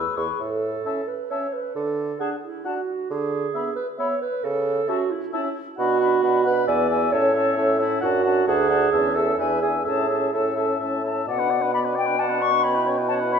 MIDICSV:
0, 0, Header, 1, 6, 480
1, 0, Start_track
1, 0, Key_signature, 3, "major"
1, 0, Tempo, 456621
1, 423, Time_signature, 3, 2, 24, 8
1, 1850, Tempo, 447761
1, 9530, Tempo, 469484
1, 11930, Tempo, 453515
1, 14176, End_track
2, 0, Start_track
2, 0, Title_t, "Flute"
2, 0, Program_c, 0, 73
2, 0, Note_on_c, 0, 88, 43
2, 176, Note_on_c, 0, 85, 36
2, 192, Note_off_c, 0, 88, 0
2, 423, Note_off_c, 0, 85, 0
2, 897, Note_on_c, 0, 81, 32
2, 983, Note_off_c, 0, 81, 0
2, 1372, Note_on_c, 0, 81, 31
2, 1457, Note_off_c, 0, 81, 0
2, 2320, Note_on_c, 0, 81, 32
2, 2408, Note_off_c, 0, 81, 0
2, 2805, Note_on_c, 0, 81, 33
2, 2892, Note_off_c, 0, 81, 0
2, 3772, Note_on_c, 0, 83, 34
2, 3858, Note_off_c, 0, 83, 0
2, 4243, Note_on_c, 0, 83, 40
2, 4330, Note_off_c, 0, 83, 0
2, 5201, Note_on_c, 0, 81, 40
2, 5287, Note_off_c, 0, 81, 0
2, 5672, Note_on_c, 0, 81, 43
2, 5760, Note_off_c, 0, 81, 0
2, 6162, Note_on_c, 0, 83, 50
2, 6398, Note_off_c, 0, 83, 0
2, 6408, Note_on_c, 0, 83, 49
2, 6635, Note_off_c, 0, 83, 0
2, 6642, Note_on_c, 0, 83, 48
2, 6863, Note_off_c, 0, 83, 0
2, 6870, Note_on_c, 0, 83, 48
2, 7109, Note_off_c, 0, 83, 0
2, 7114, Note_on_c, 0, 80, 53
2, 7351, Note_off_c, 0, 80, 0
2, 7357, Note_on_c, 0, 80, 49
2, 7592, Note_off_c, 0, 80, 0
2, 7600, Note_on_c, 0, 81, 56
2, 7834, Note_off_c, 0, 81, 0
2, 7847, Note_on_c, 0, 81, 55
2, 8070, Note_off_c, 0, 81, 0
2, 8076, Note_on_c, 0, 81, 48
2, 8313, Note_off_c, 0, 81, 0
2, 8319, Note_on_c, 0, 81, 50
2, 8556, Note_off_c, 0, 81, 0
2, 8572, Note_on_c, 0, 81, 52
2, 8796, Note_off_c, 0, 81, 0
2, 8803, Note_on_c, 0, 81, 52
2, 9041, Note_off_c, 0, 81, 0
2, 9046, Note_on_c, 0, 81, 59
2, 9277, Note_off_c, 0, 81, 0
2, 9283, Note_on_c, 0, 81, 55
2, 9523, Note_off_c, 0, 81, 0
2, 9529, Note_on_c, 0, 81, 48
2, 9758, Note_off_c, 0, 81, 0
2, 9768, Note_on_c, 0, 81, 45
2, 9997, Note_off_c, 0, 81, 0
2, 10006, Note_on_c, 0, 80, 44
2, 10238, Note_off_c, 0, 80, 0
2, 10245, Note_on_c, 0, 80, 42
2, 10480, Note_off_c, 0, 80, 0
2, 10490, Note_on_c, 0, 81, 49
2, 10722, Note_off_c, 0, 81, 0
2, 10728, Note_on_c, 0, 81, 46
2, 10964, Note_off_c, 0, 81, 0
2, 10977, Note_on_c, 0, 81, 42
2, 11209, Note_off_c, 0, 81, 0
2, 11218, Note_on_c, 0, 81, 39
2, 11451, Note_off_c, 0, 81, 0
2, 11464, Note_on_c, 0, 81, 40
2, 11694, Note_off_c, 0, 81, 0
2, 11703, Note_on_c, 0, 81, 42
2, 11932, Note_off_c, 0, 81, 0
2, 11946, Note_on_c, 0, 78, 70
2, 12391, Note_off_c, 0, 78, 0
2, 12419, Note_on_c, 0, 83, 67
2, 12482, Note_off_c, 0, 83, 0
2, 12672, Note_on_c, 0, 79, 70
2, 12900, Note_on_c, 0, 81, 62
2, 12916, Note_off_c, 0, 79, 0
2, 13138, Note_on_c, 0, 85, 73
2, 13154, Note_off_c, 0, 81, 0
2, 13365, Note_on_c, 0, 83, 67
2, 13381, Note_off_c, 0, 85, 0
2, 13626, Note_off_c, 0, 83, 0
2, 13840, Note_on_c, 0, 81, 61
2, 13903, Note_off_c, 0, 81, 0
2, 14096, Note_on_c, 0, 83, 70
2, 14176, Note_off_c, 0, 83, 0
2, 14176, End_track
3, 0, Start_track
3, 0, Title_t, "Oboe"
3, 0, Program_c, 1, 68
3, 0, Note_on_c, 1, 71, 37
3, 174, Note_off_c, 1, 71, 0
3, 184, Note_on_c, 1, 71, 34
3, 422, Note_off_c, 1, 71, 0
3, 904, Note_on_c, 1, 76, 29
3, 1072, Note_off_c, 1, 76, 0
3, 1380, Note_on_c, 1, 76, 35
3, 1548, Note_off_c, 1, 76, 0
3, 2326, Note_on_c, 1, 78, 29
3, 2497, Note_off_c, 1, 78, 0
3, 2804, Note_on_c, 1, 78, 37
3, 2976, Note_off_c, 1, 78, 0
3, 3764, Note_on_c, 1, 76, 33
3, 3935, Note_off_c, 1, 76, 0
3, 4239, Note_on_c, 1, 76, 42
3, 4411, Note_off_c, 1, 76, 0
3, 5194, Note_on_c, 1, 76, 38
3, 5365, Note_off_c, 1, 76, 0
3, 5680, Note_on_c, 1, 76, 44
3, 5851, Note_off_c, 1, 76, 0
3, 6161, Note_on_c, 1, 78, 54
3, 6397, Note_off_c, 1, 78, 0
3, 6403, Note_on_c, 1, 78, 53
3, 6636, Note_off_c, 1, 78, 0
3, 6647, Note_on_c, 1, 78, 45
3, 6867, Note_off_c, 1, 78, 0
3, 6873, Note_on_c, 1, 78, 52
3, 7111, Note_off_c, 1, 78, 0
3, 7117, Note_on_c, 1, 76, 52
3, 7346, Note_off_c, 1, 76, 0
3, 7353, Note_on_c, 1, 76, 57
3, 7590, Note_off_c, 1, 76, 0
3, 7607, Note_on_c, 1, 76, 58
3, 7837, Note_off_c, 1, 76, 0
3, 7843, Note_on_c, 1, 76, 57
3, 8073, Note_off_c, 1, 76, 0
3, 8079, Note_on_c, 1, 76, 53
3, 8309, Note_off_c, 1, 76, 0
3, 8315, Note_on_c, 1, 76, 59
3, 8546, Note_off_c, 1, 76, 0
3, 8552, Note_on_c, 1, 78, 55
3, 8790, Note_off_c, 1, 78, 0
3, 8797, Note_on_c, 1, 78, 56
3, 9038, Note_off_c, 1, 78, 0
3, 9045, Note_on_c, 1, 78, 56
3, 9279, Note_off_c, 1, 78, 0
3, 9286, Note_on_c, 1, 78, 55
3, 9520, Note_off_c, 1, 78, 0
3, 9527, Note_on_c, 1, 76, 47
3, 9751, Note_off_c, 1, 76, 0
3, 9758, Note_on_c, 1, 76, 53
3, 9989, Note_off_c, 1, 76, 0
3, 9995, Note_on_c, 1, 76, 49
3, 10222, Note_off_c, 1, 76, 0
3, 10229, Note_on_c, 1, 76, 45
3, 10469, Note_off_c, 1, 76, 0
3, 10475, Note_on_c, 1, 76, 52
3, 10713, Note_off_c, 1, 76, 0
3, 10719, Note_on_c, 1, 76, 45
3, 10955, Note_off_c, 1, 76, 0
3, 10961, Note_on_c, 1, 76, 38
3, 11195, Note_off_c, 1, 76, 0
3, 11202, Note_on_c, 1, 76, 42
3, 11436, Note_off_c, 1, 76, 0
3, 11442, Note_on_c, 1, 76, 44
3, 11683, Note_off_c, 1, 76, 0
3, 11695, Note_on_c, 1, 76, 44
3, 11928, Note_off_c, 1, 76, 0
3, 11933, Note_on_c, 1, 74, 50
3, 12060, Note_on_c, 1, 71, 42
3, 12076, Note_off_c, 1, 74, 0
3, 12179, Note_on_c, 1, 74, 48
3, 12195, Note_off_c, 1, 71, 0
3, 12298, Note_on_c, 1, 71, 46
3, 12314, Note_off_c, 1, 74, 0
3, 12418, Note_off_c, 1, 71, 0
3, 12425, Note_on_c, 1, 74, 41
3, 12542, Note_on_c, 1, 71, 42
3, 12558, Note_off_c, 1, 74, 0
3, 12654, Note_on_c, 1, 74, 46
3, 12670, Note_off_c, 1, 71, 0
3, 12769, Note_on_c, 1, 71, 41
3, 12785, Note_off_c, 1, 74, 0
3, 12885, Note_off_c, 1, 71, 0
3, 12892, Note_on_c, 1, 74, 49
3, 13014, Note_on_c, 1, 71, 42
3, 13030, Note_off_c, 1, 74, 0
3, 13134, Note_on_c, 1, 74, 48
3, 13150, Note_off_c, 1, 71, 0
3, 13249, Note_on_c, 1, 71, 41
3, 13265, Note_off_c, 1, 74, 0
3, 13371, Note_off_c, 1, 71, 0
3, 13376, Note_on_c, 1, 73, 46
3, 13495, Note_on_c, 1, 71, 43
3, 13511, Note_off_c, 1, 73, 0
3, 13617, Note_on_c, 1, 73, 46
3, 13633, Note_off_c, 1, 71, 0
3, 13737, Note_on_c, 1, 71, 41
3, 13753, Note_off_c, 1, 73, 0
3, 13855, Note_off_c, 1, 71, 0
3, 13860, Note_on_c, 1, 73, 41
3, 13972, Note_on_c, 1, 71, 45
3, 13988, Note_off_c, 1, 73, 0
3, 14098, Note_on_c, 1, 73, 45
3, 14114, Note_off_c, 1, 71, 0
3, 14176, Note_off_c, 1, 73, 0
3, 14176, End_track
4, 0, Start_track
4, 0, Title_t, "Clarinet"
4, 0, Program_c, 2, 71
4, 0, Note_on_c, 2, 68, 42
4, 418, Note_on_c, 2, 69, 53
4, 434, Note_off_c, 2, 68, 0
4, 1133, Note_on_c, 2, 71, 51
4, 1148, Note_off_c, 2, 69, 0
4, 1365, Note_off_c, 2, 71, 0
4, 1371, Note_on_c, 2, 73, 53
4, 1610, Note_on_c, 2, 71, 50
4, 1625, Note_off_c, 2, 73, 0
4, 1843, Note_off_c, 2, 71, 0
4, 1849, Note_on_c, 2, 69, 49
4, 2316, Note_off_c, 2, 69, 0
4, 2323, Note_on_c, 2, 68, 54
4, 2433, Note_off_c, 2, 68, 0
4, 2567, Note_on_c, 2, 64, 48
4, 2805, Note_on_c, 2, 66, 45
4, 2821, Note_off_c, 2, 64, 0
4, 3278, Note_off_c, 2, 66, 0
4, 3285, Note_on_c, 2, 68, 57
4, 3988, Note_off_c, 2, 68, 0
4, 3996, Note_on_c, 2, 71, 62
4, 4106, Note_off_c, 2, 71, 0
4, 4242, Note_on_c, 2, 73, 61
4, 4474, Note_off_c, 2, 73, 0
4, 4480, Note_on_c, 2, 71, 60
4, 4722, Note_on_c, 2, 69, 63
4, 4738, Note_off_c, 2, 71, 0
4, 5202, Note_on_c, 2, 66, 71
4, 5219, Note_off_c, 2, 69, 0
4, 5444, Note_on_c, 2, 64, 59
4, 5460, Note_off_c, 2, 66, 0
4, 5676, Note_off_c, 2, 64, 0
4, 5682, Note_on_c, 2, 64, 61
4, 5919, Note_off_c, 2, 64, 0
4, 6162, Note_on_c, 2, 66, 76
4, 6835, Note_off_c, 2, 66, 0
4, 6884, Note_on_c, 2, 71, 79
4, 7116, Note_off_c, 2, 71, 0
4, 7122, Note_on_c, 2, 74, 80
4, 7598, Note_on_c, 2, 73, 83
4, 7614, Note_off_c, 2, 74, 0
4, 8319, Note_off_c, 2, 73, 0
4, 8330, Note_on_c, 2, 64, 78
4, 8572, Note_on_c, 2, 66, 76
4, 8588, Note_off_c, 2, 64, 0
4, 9049, Note_off_c, 2, 66, 0
4, 9056, Note_on_c, 2, 68, 86
4, 9769, Note_on_c, 2, 69, 70
4, 9784, Note_off_c, 2, 68, 0
4, 9996, Note_off_c, 2, 69, 0
4, 10002, Note_on_c, 2, 71, 69
4, 10236, Note_off_c, 2, 71, 0
4, 10243, Note_on_c, 2, 68, 62
4, 10351, Note_off_c, 2, 68, 0
4, 10487, Note_on_c, 2, 68, 66
4, 10973, Note_on_c, 2, 69, 55
4, 10988, Note_off_c, 2, 68, 0
4, 11454, Note_off_c, 2, 69, 0
4, 11937, Note_on_c, 2, 74, 65
4, 12904, Note_on_c, 2, 78, 59
4, 12920, Note_off_c, 2, 74, 0
4, 13370, Note_off_c, 2, 78, 0
4, 13376, Note_on_c, 2, 79, 60
4, 13858, Note_on_c, 2, 78, 62
4, 13874, Note_off_c, 2, 79, 0
4, 14176, Note_off_c, 2, 78, 0
4, 14176, End_track
5, 0, Start_track
5, 0, Title_t, "French horn"
5, 0, Program_c, 3, 60
5, 895, Note_on_c, 3, 61, 32
5, 1063, Note_off_c, 3, 61, 0
5, 1373, Note_on_c, 3, 61, 34
5, 1542, Note_off_c, 3, 61, 0
5, 2326, Note_on_c, 3, 62, 35
5, 2498, Note_off_c, 3, 62, 0
5, 2797, Note_on_c, 3, 62, 36
5, 2968, Note_off_c, 3, 62, 0
5, 3764, Note_on_c, 3, 59, 37
5, 3935, Note_off_c, 3, 59, 0
5, 4237, Note_on_c, 3, 59, 42
5, 4409, Note_off_c, 3, 59, 0
5, 5196, Note_on_c, 3, 61, 45
5, 5367, Note_off_c, 3, 61, 0
5, 5683, Note_on_c, 3, 61, 48
5, 5855, Note_off_c, 3, 61, 0
5, 6166, Note_on_c, 3, 62, 52
5, 6397, Note_off_c, 3, 62, 0
5, 6404, Note_on_c, 3, 62, 46
5, 6636, Note_off_c, 3, 62, 0
5, 6642, Note_on_c, 3, 62, 53
5, 6875, Note_off_c, 3, 62, 0
5, 6885, Note_on_c, 3, 62, 46
5, 7117, Note_off_c, 3, 62, 0
5, 7126, Note_on_c, 3, 59, 55
5, 7357, Note_off_c, 3, 59, 0
5, 7364, Note_on_c, 3, 59, 50
5, 7592, Note_off_c, 3, 59, 0
5, 7598, Note_on_c, 3, 61, 57
5, 7825, Note_off_c, 3, 61, 0
5, 7832, Note_on_c, 3, 61, 52
5, 8070, Note_off_c, 3, 61, 0
5, 8083, Note_on_c, 3, 61, 54
5, 8313, Note_off_c, 3, 61, 0
5, 8319, Note_on_c, 3, 61, 46
5, 8552, Note_off_c, 3, 61, 0
5, 8559, Note_on_c, 3, 62, 55
5, 8798, Note_off_c, 3, 62, 0
5, 8803, Note_on_c, 3, 62, 53
5, 9041, Note_off_c, 3, 62, 0
5, 9047, Note_on_c, 3, 62, 52
5, 9285, Note_off_c, 3, 62, 0
5, 9299, Note_on_c, 3, 62, 53
5, 9529, Note_off_c, 3, 62, 0
5, 9535, Note_on_c, 3, 61, 51
5, 9761, Note_off_c, 3, 61, 0
5, 9768, Note_on_c, 3, 61, 45
5, 9997, Note_off_c, 3, 61, 0
5, 10002, Note_on_c, 3, 62, 46
5, 10233, Note_off_c, 3, 62, 0
5, 10239, Note_on_c, 3, 62, 41
5, 10474, Note_off_c, 3, 62, 0
5, 10480, Note_on_c, 3, 61, 46
5, 10719, Note_off_c, 3, 61, 0
5, 10726, Note_on_c, 3, 61, 45
5, 10962, Note_off_c, 3, 61, 0
5, 10971, Note_on_c, 3, 61, 44
5, 11204, Note_off_c, 3, 61, 0
5, 11210, Note_on_c, 3, 61, 39
5, 11447, Note_off_c, 3, 61, 0
5, 11451, Note_on_c, 3, 61, 42
5, 11688, Note_off_c, 3, 61, 0
5, 11694, Note_on_c, 3, 61, 36
5, 11927, Note_off_c, 3, 61, 0
5, 11932, Note_on_c, 3, 59, 45
5, 12056, Note_on_c, 3, 62, 46
5, 12072, Note_off_c, 3, 59, 0
5, 12178, Note_on_c, 3, 59, 48
5, 12194, Note_off_c, 3, 62, 0
5, 12298, Note_on_c, 3, 62, 41
5, 12314, Note_off_c, 3, 59, 0
5, 12413, Note_off_c, 3, 62, 0
5, 12420, Note_on_c, 3, 59, 46
5, 12548, Note_on_c, 3, 62, 45
5, 12564, Note_off_c, 3, 59, 0
5, 12670, Note_on_c, 3, 59, 43
5, 12686, Note_off_c, 3, 62, 0
5, 12782, Note_on_c, 3, 62, 39
5, 12798, Note_off_c, 3, 59, 0
5, 12894, Note_off_c, 3, 62, 0
5, 12901, Note_on_c, 3, 59, 43
5, 13018, Note_on_c, 3, 62, 43
5, 13034, Note_off_c, 3, 59, 0
5, 13136, Note_on_c, 3, 59, 39
5, 13152, Note_off_c, 3, 62, 0
5, 13252, Note_on_c, 3, 62, 41
5, 13268, Note_off_c, 3, 59, 0
5, 13372, Note_off_c, 3, 62, 0
5, 13383, Note_on_c, 3, 61, 44
5, 13503, Note_on_c, 3, 64, 40
5, 13519, Note_off_c, 3, 61, 0
5, 13629, Note_on_c, 3, 61, 45
5, 13645, Note_off_c, 3, 64, 0
5, 13750, Note_on_c, 3, 64, 40
5, 13766, Note_off_c, 3, 61, 0
5, 13862, Note_off_c, 3, 64, 0
5, 13873, Note_on_c, 3, 61, 46
5, 13992, Note_on_c, 3, 64, 44
5, 14008, Note_off_c, 3, 61, 0
5, 14105, Note_on_c, 3, 61, 40
5, 14121, Note_off_c, 3, 64, 0
5, 14176, Note_off_c, 3, 61, 0
5, 14176, End_track
6, 0, Start_track
6, 0, Title_t, "Bassoon"
6, 0, Program_c, 4, 70
6, 178, Note_on_c, 4, 40, 38
6, 289, Note_off_c, 4, 40, 0
6, 419, Note_on_c, 4, 45, 44
6, 821, Note_off_c, 4, 45, 0
6, 1844, Note_on_c, 4, 50, 47
6, 2248, Note_off_c, 4, 50, 0
6, 3291, Note_on_c, 4, 50, 46
6, 3688, Note_off_c, 4, 50, 0
6, 4721, Note_on_c, 4, 49, 51
6, 5122, Note_off_c, 4, 49, 0
6, 6168, Note_on_c, 4, 47, 60
6, 6587, Note_off_c, 4, 47, 0
6, 6643, Note_on_c, 4, 47, 57
6, 7063, Note_off_c, 4, 47, 0
6, 7122, Note_on_c, 4, 40, 61
6, 7542, Note_off_c, 4, 40, 0
6, 7598, Note_on_c, 4, 45, 63
6, 8021, Note_off_c, 4, 45, 0
6, 8082, Note_on_c, 4, 45, 67
6, 8506, Note_off_c, 4, 45, 0
6, 8564, Note_on_c, 4, 42, 60
6, 8991, Note_off_c, 4, 42, 0
6, 9052, Note_on_c, 4, 38, 67
6, 9477, Note_off_c, 4, 38, 0
6, 9539, Note_on_c, 4, 40, 63
6, 9947, Note_off_c, 4, 40, 0
6, 10013, Note_on_c, 4, 40, 54
6, 10432, Note_off_c, 4, 40, 0
6, 10488, Note_on_c, 4, 45, 54
6, 10913, Note_off_c, 4, 45, 0
6, 10973, Note_on_c, 4, 45, 46
6, 11397, Note_off_c, 4, 45, 0
6, 11457, Note_on_c, 4, 45, 46
6, 11879, Note_off_c, 4, 45, 0
6, 11938, Note_on_c, 4, 47, 60
6, 14176, Note_off_c, 4, 47, 0
6, 14176, End_track
0, 0, End_of_file